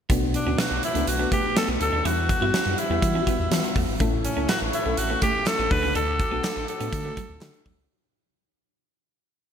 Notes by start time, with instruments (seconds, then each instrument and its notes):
0.09 analog synth bass B1, fm electric piano B2 A3 B3 D4 F#4, clean electric guitar B3, analog synth pad B4 A5 D6, kick, closed hi-hat
0.34 tenor saxophone D4, muted clean electric guitar stroke, closed hi-hat
0.46 analog synth bass D2, fm electric piano A3 B3 D4 F#4, clean electric guitar C#4
0.58 clean electric guitar B3, tenor saxophone F#4, snare, closed hi-hat
0.71 analog synth bass B1, muted clean electric guitar stroke
0.83 tenor saxophone E4, closed hi-hat
0.94 analog synth bass C#2, fm electric piano A3 B3 D4 F#4, clean electric guitar A3, closed hi-hat
1.07 analog synth bass B1, tenor saxophone F#4, muted clean electric guitar stroke, closed hi-hat
1.19 fm electric piano A3 B3 D4 F#4, clean electric guitar B3
1.32 clean electric guitar A3, tenor saxophone G4, kick, closed hi-hat
1.56 fm electric piano A3 B3 D4 F#4, tenor saxophone A4, snare, closed hi-hat
1.68 analog synth bass B1, clean electric guitar B3
1.81 analog synth bass D2, tenor saxophone A4, muted clean electric guitar stroke, closed hi-hat
1.93 analog synth bass D#2, clean electric guitar D4
2.05 analog synth bass E2, fm electric piano E3 G3 B3 E4 F#4, analog synth pad G3 F#5 E6, clean electric guitar E4, tenor saxophone F#4, closed hi-hat
2.29 muted clean electric guitar stroke, kick, closed hi-hat
2.41 analog synth bass G2, fm electric piano G3 B3 E4 F#4, clean electric guitar E4
2.54 clean electric guitar C#4, snare, closed hi-hat
2.66 analog synth bass F#2, muted clean electric guitar stroke
2.78 tenor saxophone E4, closed hi-hat
2.90 analog synth bass E2, fm electric piano G3 B3 E4 F#4, clean electric guitar B3
3.02 analog synth bass E3, muted clean electric guitar stroke, kick, closed hi-hat
3.14 fm electric piano G3 B3 E4 F4, clean electric guitar C#4
3.21 fm electric piano F#4
3.27 clean electric guitar B3, kick, closed hi-hat
3.39 analog synth bass E2
3.51 analog synth bass E3, fm electric piano G3 B3 E4 F4, snare, closed hi-hat
3.58 fm electric piano F#4
3.64 closed hi-hat
3.76 analog synth bass E2, clean electric guitar A3, kick, open hi-hat
3.88 analog synth bass G#1
4.00 analog synth bass A1, fm electric piano A2 A3 C#4 E4 A4, clean electric guitar A3, analog synth pad A4 E5 C#6, kick, closed hi-hat
4.25 tenor saxophone C#4, muted clean electric guitar stroke, closed hi-hat
4.36 analog synth bass C#2, fm electric piano A3 C#4 E4 A4, clean electric guitar C#4
4.49 clean electric guitar B3, tenor saxophone F#4, snare, clap, closed hi-hat
4.61 analog synth bass A1, muted clean electric guitar stroke
4.73 tenor saxophone E4, closed hi-hat
4.85 analog synth bass B1, fm electric piano A3 C#4 E4 A4, clean electric guitar A3
4.97 analog synth bass A1, tenor saxophone F#4, muted clean electric guitar stroke, closed hi-hat
5.09 fm electric piano A3 C#4 E4 A4, clean electric guitar B3
5.22 clean electric guitar A3, tenor saxophone G4, kick, clap, closed hi-hat
5.46 fm electric piano A3 C#4 E4 A4, tenor saxophone A4, snare, clap, closed hi-hat
5.59 analog synth bass A1, clean electric guitar B3
5.70 analog synth bass D2, fm electric piano D3 A3 D4 F#4 A4, tenor saxophone B4, analog synth pad F#5 D6, muted clean electric guitar stroke, kick, open hi-hat
5.83 analog synth bass C#2, clean electric guitar C#4
5.95 analog synth bass D2, clean electric guitar D4, tenor saxophone A4, closed hi-hat
6.20 muted clean electric guitar stroke, kick, closed hi-hat
6.31 analog synth bass B1, fm electric piano A3 D4 F#4 A4, clean electric guitar B3
6.44 clean electric guitar A3, snare, clap, closed hi-hat
6.56 analog synth bass A1, muted clean electric guitar stroke
6.68 tenor saxophone A4, closed hi-hat
6.80 analog synth bass A2, fm electric piano A3 D4 F#4 A4, clean electric guitar B3, closed hi-hat
6.93 analog synth bass D3, muted clean electric guitar stroke, kick, closed hi-hat
7.04 fm electric piano A3 D4 F#4 A4, clean electric guitar A3
7.17 clean electric guitar F#3, kick, clap, closed hi-hat
7.29 analog synth bass D2
7.41 analog synth bass D3, fm electric piano A3 D4 F#4 A4, snare, clap, closed hi-hat
7.54 closed hi-hat
7.66 analog synth bass D2, clean electric guitar F#3, kick, open hi-hat
7.78 analog synth bass C#2